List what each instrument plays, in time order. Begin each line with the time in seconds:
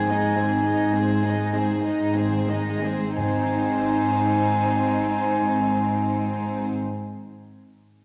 Already playing: double bass section G#1, cello section G#2, harp G#2 C4, violin section G#4 C5, oboe G#5
0.08 viola section G#3, violin section D#4 D#5
0.30 harp D#4
0.37 viola section C4, violin section G#4 C5
0.66 double bass section G#1, cello section G#2, viola section G#3, violin section D#4 D#5, harp G#4
0.94 viola section C4, violin section G#4 C5
1.05 harp C5
1.23 viola section G#3, violin section D#4 D#5
1.44 harp D#4
1.52 viola section C4, violin section G#4 C5
1.84 double bass section G#1, cello section G#2, viola section G#3, harp C4, violin section D#4 D#5
2.15 viola section C4, violin section G#4 C5
2.27 harp D#3
2.48 viola section G#3, violin section D#4 D#5
2.72 harp C4
2.82 viola section C4, violin section G#4 C5
3.17 double bass section G#1, timpani G#2, harp G#2, cello section G#2, viola section C4, french horn section C4 D#4, violin section D#4 C5, oboe G#5
3.24 harp G#3
3.32 harp C4
3.39 harp D#4
3.46 harp G#4
3.53 harp D#5